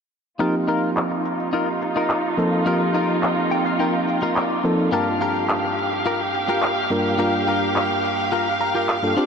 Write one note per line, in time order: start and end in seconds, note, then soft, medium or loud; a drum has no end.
0.39 2.34 F3 medium
0.39 2.34 A#3 medium
0.39 2.35 C4 medium
0.39 0.54 D#4 loud
0.39 4.89 D#4 medium
0.39 2.35 D#4 medium
0.39 4.89 F4 medium
0.39 0.54 F4 medium
0.39 2.35 G4 medium
0.39 0.55 A#4 loud
0.39 cabasa soft
0.55 cabasa soft
0.68 0.89 D#4 medium
0.68 0.90 F4 medium
0.68 0.90 A#4 medium
0.68 cabasa medium
0.83 cabasa soft
0.97 clap loud
0.97 cabasa soft
1.11 muted clean electric guitar stroke soft
1.11 cabasa soft
1.25 cabasa medium
1.40 cabasa soft
1.53 1.67 D#4 medium
1.53 1.68 F4 medium
1.53 1.68 A#4 medium
1.53 cabasa soft
1.68 cabasa soft
1.81 muted clean electric guitar stroke soft
1.81 cabasa medium
1.96 2.17 D#4 medium
1.96 2.17 F4 medium
1.96 2.17 A#4 medium
1.96 cabasa soft
2.10 clap loud
2.10 cabasa soft
2.25 cabasa soft
2.37 2.63 F3 medium
2.37 2.63 A#3 medium
2.37 2.63 C4 medium
2.37 2.63 D#4 medium
2.37 2.63 A4 loud
2.37 muted clean electric guitar stroke soft
2.37 cabasa medium
2.53 cabasa soft
2.65 4.61 F3 medium
2.65 4.61 A#3 medium
2.65 4.61 C4 medium
2.65 2.81 D#4 medium
2.65 4.61 D#4 medium
2.65 2.81 F4 medium
2.65 4.62 G4 medium
2.65 2.81 A#4 loud
2.65 cabasa soft
2.81 cabasa soft
2.94 3.16 D#4 medium
2.94 3.16 F4 medium
2.94 3.16 A#4 medium
2.94 cabasa medium
3.10 cabasa soft
3.23 clap loud
3.23 cabasa soft
3.37 muted clean electric guitar stroke soft
3.37 cabasa soft
3.51 3.65 G5 medium
3.51 cabasa medium
3.66 3.79 F5 medium
3.66 cabasa soft
3.79 3.94 D#4 medium
3.79 3.94 F4 medium
3.79 3.94 A#4 medium
3.79 4.19 G5 medium
3.79 cabasa soft
3.94 cabasa soft
4.08 muted clean electric guitar stroke soft
4.08 cabasa medium
4.22 4.43 D#4 medium
4.22 4.43 F4 medium
4.22 4.44 A#4 medium
4.22 4.35 F5 medium
4.22 cabasa soft
4.36 4.89 D5 medium
4.36 clap loud
4.36 cabasa soft
4.51 cabasa soft
4.64 4.89 F3 medium
4.64 4.89 A#3 medium
4.64 4.89 C4 medium
4.64 4.90 D#4 medium
4.64 4.90 A4 loud
4.64 muted clean electric guitar stroke soft
4.64 cabasa medium
4.79 cabasa soft
4.92 6.87 G2 medium
4.92 6.87 A#3 medium
4.92 6.87 D4 medium
4.92 5.07 F4 loud
4.92 6.88 F4 medium
4.92 5.07 G4 medium
4.92 9.13 G4 medium
4.92 5.07 A#4 loud
4.92 9.26 F5 medium
4.92 6.88 A5 medium
4.92 cabasa soft
5.08 cabasa soft
5.21 5.42 F4 medium
5.21 5.43 G4 medium
5.21 5.43 A#4 medium
5.21 cabasa medium
5.36 cabasa soft
5.49 clap loud
5.49 cabasa soft
5.64 muted clean electric guitar stroke soft
5.64 cabasa soft
5.78 cabasa medium
5.92 cabasa soft
6.06 6.20 F4 medium
6.06 6.20 G4 medium
6.06 6.21 A#4 medium
6.06 cabasa soft
6.21 cabasa soft
6.34 muted clean electric guitar stroke soft
6.34 cabasa medium
6.48 6.70 F4 medium
6.48 6.70 G4 medium
6.48 6.70 A#4 medium
6.48 cabasa soft
6.62 clap loud
6.62 cabasa soft
6.77 cabasa soft
6.90 7.16 G2 medium
6.90 7.16 A#3 medium
6.90 7.16 D4 medium
6.90 7.16 F4 medium
6.90 7.16 A#4 loud
6.90 muted clean electric guitar stroke soft
6.90 cabasa medium
7.06 cabasa soft
7.18 9.00 G2 medium
7.18 9.00 A#3 medium
7.18 9.01 D4 medium
7.18 7.33 F4 loud
7.18 9.01 F4 medium
7.18 7.34 G4 medium
7.18 7.34 A#4 loud
7.18 cabasa soft
7.34 cabasa soft
7.47 7.69 F4 medium
7.47 7.69 G4 medium
7.47 7.69 A#4 medium
7.47 cabasa medium
7.62 cabasa soft
7.76 clap loud
7.76 cabasa soft
7.90 muted clean electric guitar stroke soft
7.90 cabasa soft
8.04 cabasa medium
8.19 cabasa soft
8.32 8.47 F4 medium
8.32 8.47 G4 medium
8.32 8.47 A#4 medium
8.32 cabasa soft
8.47 cabasa soft
8.60 8.74 A#5 medium
8.60 muted clean electric guitar stroke soft
8.60 cabasa medium
8.74 8.96 F4 medium
8.74 8.96 G4 medium
8.74 8.96 A#4 medium
8.74 8.88 G5 medium
8.74 cabasa soft
8.89 9.02 F5 medium
8.89 clap loud
8.89 cabasa soft
9.03 9.14 G2 medium
9.03 9.14 A#3 medium
9.03 9.14 D4 medium
9.03 9.14 F4 medium
9.03 9.14 A4 medium
9.03 9.16 F5 medium
9.03 cabasa soft
9.16 9.26 C4 medium
9.16 9.26 D4 medium
9.16 9.26 F4 medium
9.16 9.26 G4 medium
9.16 9.26 C5 medium
9.16 9.26 D5 medium
9.16 cabasa medium